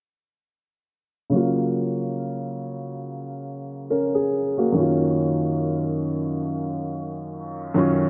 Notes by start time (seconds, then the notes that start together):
1.30 C#3 F#3
1.34 A#3 F4
3.90 C#4 A#4
4.15 G#4
4.58 A#3 F#4
4.72 F#2 D#3 F#3
4.77 C#4 F4
7.74 F#2 D#3 F#3 C#4 F4